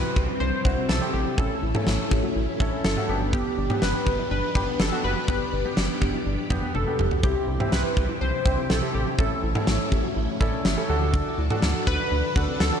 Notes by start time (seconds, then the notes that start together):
Already playing: C3 G3 C4 E4 F#4 B4
0.16 C2 G4, kick
0.28 E4
0.40 C2 D4 C5
0.65 C2 C4 D4 E4 F#4, kick
0.77 C4
0.89 B1 E4 A4, snare
1.01 C4 E4 G4
1.13 A1 G4 A4
1.26 G4
1.38 A1 A3 C#4 E4 A4, kick
1.62 A1 E4
1.75 C#4 E4 A4, mid tom
1.87 A1 E4, snare
2.11 A1 G4, kick
2.23 F#4
2.36 A1 E4
2.60 A1 C#4 D4 E4 A4, kick
2.72 C#4
2.84 G1 E4 A4, snare
2.96 C#4 E4 F#4 G4, mid tom
3.09 G1 B3 D4 G4 A4
3.21 G4
3.33 B3 G4, kick
3.58 G1 D4
3.70 B3 D4 G4, mid tom
3.82 G1 D4 B4, snare
4.07 G1 G4, kick
4.19 E4
4.31 G1 D4 B4
4.55 G1 B3 D4 G4, kick
4.67 B3
4.79 G1 D4 A4, snare
4.92 B3 D4 F#4
5.04 F#1 G4 B4
5.16 F#4
5.28 G1 B3 D4 G4 B4, kick
5.53 G1 D4
5.65 B3 D4 G4
5.77 G1 D4, snare
6.02 G1 G4, kick
6.14 E4
6.26 G1 D4
6.50 G1 B3 D4 G4, kick, mid tom
6.63 B3
6.75 F#1 D4 A4, high tom
6.87 B3 D4 F#4 G4
6.99 E1 G4, mid tom
7.11 F#4, floor tom
7.23 C2 C3 C4 E4 G4, kick
7.48 C2 E4
7.60 C4 E4 G4, mid tom
7.72 C2 E4 B4, snare
7.97 C2 G4, kick
8.09 E4
8.21 C2 D4 C5
8.45 C2 C4 D4 E4 G4, kick
8.58 C4
8.70 B1 E4 A4, snare
8.82 C4 E4 G4
8.94 A1 G4 A4
9.07 G4
9.18 A1 A3 C#4 E4 A4, kick
9.43 A1 E4
9.55 C#4 E4 A4, mid tom
9.67 A1 E4, snare
9.92 A1 G4, kick
10.04 F#4
10.16 A1 E4
10.40 A1 C#4 E4 A4 D5, kick
10.53 C#4
10.65 G1 E4 E5, snare
10.77 C#4 E4 G4 A4
10.89 D2 D3 D4 F#4 A4 A5
11.02 G4
11.14 D4, kick
11.38 D2 E4
11.50 D4 E4 F#4 A4, mid tom
11.62 D2 E4, snare
11.87 D2 F#4 B4, kick
11.99 E4
12.11 D2 D4
12.36 D2 D4 F#4 A4, kick
12.48 C4
12.60 D2 D4 A4, snare
12.72 D4 F#4 A4